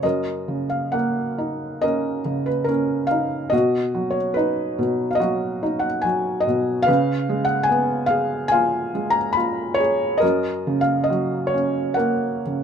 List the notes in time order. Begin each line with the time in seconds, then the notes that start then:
0.03 F#2 A#4 D#5
0.48 C#3
0.70 F5
0.92 A#3 F#5
1.38 D#4
1.82 C#4 A#4 D#5
2.25 C#3
2.46 B4
2.64 A#4
2.69 C#4
3.07 F5
3.11 D#4
3.50 B2 F#4 D#5
3.95 F#3
4.11 C#5
4.34 D#4 B4
4.79 B2
5.11 F5
5.15 D#5
5.20 F#3 F#4
5.63 D#4
5.79 F#5
6.02 F#3 G#5
6.40 D#5
6.47 B2
6.82 B4 F5
6.88 C#3
7.29 G#3
7.45 F#5
7.63 G#5
7.69 B3
8.06 F5
8.10 G#4
8.48 F5 G#5
8.53 F4
8.95 G#3
9.10 A#5
9.33 B5
9.37 F4
9.74 C#5
9.80 G#4
10.18 A#4 D#5
10.23 F#2
10.67 C#3
10.81 F5
11.04 D#5
11.10 F#3
11.47 C#5
11.54 C#4
11.94 A#4 F#5
11.99 A#3
12.46 C#3